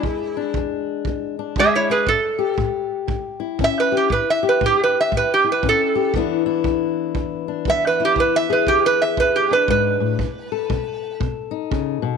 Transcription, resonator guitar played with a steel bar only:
X:1
M:4/4
L:1/8
Q:"Swing" 1/4=118
K:Emix
V:1 name="Resonator guitar played with a steel bar"
E2 z4 (3[Ge] [Ec] [GB] | A2 z4 (3e B =G | (3B e B (3=G B e (3B G B A2 | z6 (3e B =G |
(3B e B (3=G B e (3B G B B2- | B4 z4 |]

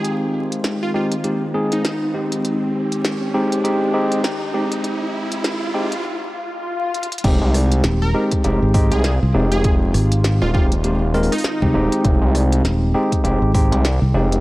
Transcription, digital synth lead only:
X:1
M:4/4
L:1/16
Q:"Swing 16ths" 1/4=100
K:Fm
V:1 name="Digital synth lead"
A z4 F F z4 E4- E- | E z12 z3 | z16 | z4 z B2 z4 A2 z2 A- |
A z4 F F z4 E4- E- | E z12 z3 |]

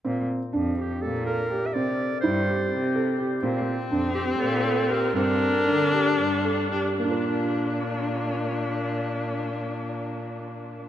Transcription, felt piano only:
X:1
M:7/8
L:1/8
Q:1/4=119
K:Bb
V:1 name="Felt piano"
C2 D G2 A G | C2 =E G2 A G | C2 D G2 A G | C2 D G2 A G |
[B,DFB]6- [B,DFB]- | [B,DFB]6- [B,DFB] |]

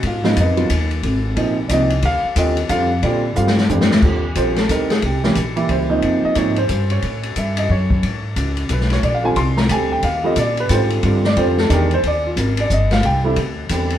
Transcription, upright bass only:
X:1
M:3/4
L:1/8
Q:"Swing" 1/4=180
K:Eb
V:1 name="Upright bass" clef=bass
A,,2 F,,2 E,,2 | A,,,2 B,,,2 C,,2 | D,, z E,,2 F,,2 | B,,2 G,,2 F,,2 |
E,,2 B,,,2 D,,2 | C,,2 B,,,2 _D,,2 | F,, z A,,2 G,,2 | =A,,2 G,,2 _G,,2 |
A,,2 _D,,2 _C,,2 | B,,,2 C,,2 D,,2 | E,,2 B,,2 A,,2 | G,,2 F,,2 _F,,2 |
E,,2 A,,,2 G,,,2 | C,,2 D,,2 =E,,2 |]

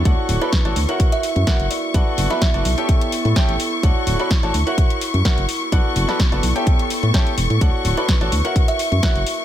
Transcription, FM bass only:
X:1
M:4/4
L:1/16
Q:"Swing 16ths" 1/4=127
K:D
V:1 name="FM bass" clef=bass
D,, z D,,, z2 A,,, D,, z4 F,, z F,,, z2 | B,,, z F,,, z2 F,,, B,,, z4 A,, z A,,, z2 | D,, z D,,, z2 A,,, D,, z4 F,, z F,,, z2 | B,,, z F,,, z2 F,,, B,,, z4 A,, z2 E,,, A,, |
D,, z D,,, z2 A,,, D,, z4 F,, z F,,, z2 |]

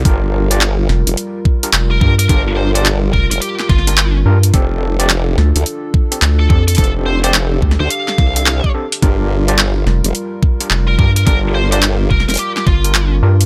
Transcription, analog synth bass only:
X:1
M:4/4
L:1/8
Q:"Swing 16ths" 1/4=107
K:Gm
V:1 name="Analog synth bass" clef=bass
z3 F,,, z2 F,,, G,, | z3 F,,, z G,,,2 G,, | z3 D,, z2 D,, F,, | z3 D,, z4 |
z3 F,,, z2 F,,, G,, | z3 F,,, z G,,,2 G,, |]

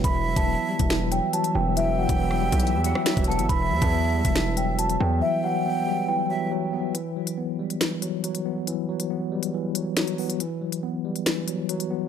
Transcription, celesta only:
X:1
M:4/4
L:1/16
Q:1/4=139
K:Em
V:1 name="Celesta"
b3 a6- a g2 a2 g2 | e2 f6 g6 a2 | b3 a6- a g2 a2 g2 | e2 f6 g8 |
z16 | z16 | z16 |]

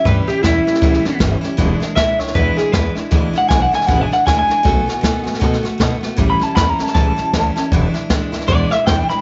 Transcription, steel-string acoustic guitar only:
X:1
M:4/4
L:1/8
Q:"Swing" 1/4=156
K:Emix
V:1 name="Steel-string acoustic guitar"
[A,,E,=G,CE] [G,CE] [E,G,CE] [G,CE] [A,,E,G,CE] [G,CE] [E,G,CE] [G,CE] | [E,,B,,E,G,DE] [E,G,DE] [E,G,DE] [E,G,DE] [E,,B,,E,G,DE] [E,G,DE] [E,G,DE] [E,G,DE] | [E,,B,,E,G,DE] [E,G,DE] [E,G,DE] [E,G,DE] [E,,B,,E,G,DE] [E,G,DE] [E,G,DE] [E,G,DE] | [B,,^D,A,B,F] [A,B,F] [D,A,B,F] [A,B,F] [B,,D,A,B,F] [A,B,F] [D,A,B,F] [A,B,F] |
[A,,E,=G,CE] [G,CE] [E,G,CE] [G,CE] [A,,E,G,CE] [G,CE] [E,G,CE] [G,CE] | [E,,B,,E,G,DE] [E,G,DE] [E,G,DE] [E,G,DE] [E,,B,,E,G,DE] [E,G,DE] [E,G,DE] [E,G,DE] |]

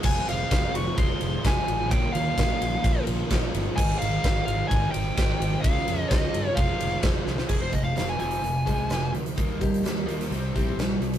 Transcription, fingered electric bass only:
X:1
M:4/4
L:1/8
Q:1/4=129
K:Fm
V:1 name="Fingered electric bass" clef=bass
F,,, F,,, F,,, F,,, F,,, F,,, F,,, =A,,, | B,,, E,, B,,, B,,, B,,, B,,, B,,, G,,, | A,,, A,,, A,,, A,,, A,,, A,,, A,,, A,,, | D,, F,, D,, G,, F,,, F,,, F,,, C,, |
F,,,2 F,,, F,,, F,,, C,, F,,, =D,, | E,, E,, E,, E,, C,, B,,, B,,, C,, |]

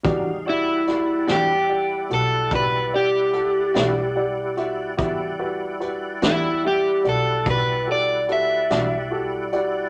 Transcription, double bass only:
X:1
M:12/8
L:1/8
Q:3/8=49
K:Em
V:1 name="Double bass" clef=bass
E,,3 E,,2 B,,, B,,,3 B,,,3 | E,,3 E,,2 B,,, B,,,3 B,,,3 |]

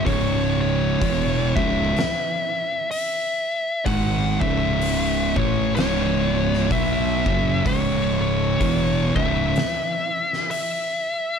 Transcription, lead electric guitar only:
X:1
M:4/4
L:1/8
Q:"Swing" 1/4=63
K:C#m
V:1 name="Lead electric guitar"
c c2 e3 e2 | f e2 c c2 e2 | c c2 e3 e2 |]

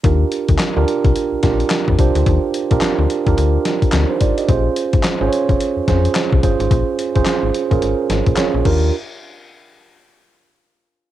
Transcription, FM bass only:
X:1
M:4/4
L:1/16
Q:"Swing 16ths" 1/4=108
K:Eb
V:1 name="FM bass" clef=bass
E,,2 z D,, z D,, z C,, z B,,, B,,,2 z F,, C,, D,, | E,, z2 B,,, z D,, z E,, D,,2 z2 D,, z A,,, z | B,,,2 z A,,, z A,,, z F,,, z F,, F,,2 z C,, G,,, A,,, | B,,, z2 F,,, z A,,, z B,,, A,,, z A,,, B,,, z B,,, E,,2 |
z16 |]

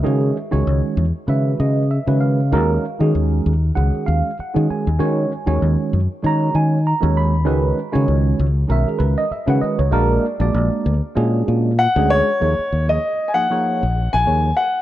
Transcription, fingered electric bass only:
X:1
M:4/4
L:1/16
Q:"Swing 16ths" 1/4=97
K:Ebphr
V:1 name="Fingered electric bass" clef=bass
D,2 z D,, D,, z F,, z D,2 D,3 D,3 | E,,2 z E, E,,2 E,,2 D,, z E,, z2 E, z E,, | E,2 z E,, E,, z G,, z E,2 E,3 E,,3 | D,,2 z D, D,,2 D,,2 C,, z D,, z2 D, z D,, |
B,,,2 z B,,, B,,, z =D,, z B,,2 B,,3 D,,2 z | [K:Ebm] E,, z E,,2 z4 z B,,,2 B,,, E,,2 z2 |]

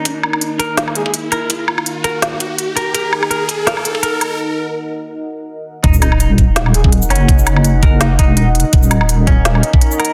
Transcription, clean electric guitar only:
X:1
M:4/4
L:1/8
Q:"Swing 16ths" 1/4=166
K:Ebm
V:1 name="Clean electric guitar"
z3 B z3 B | z3 B z3 B | B z B z B z B z | z8 |
E E E z4 D- | D3 B E E E z | z3 D4 B |]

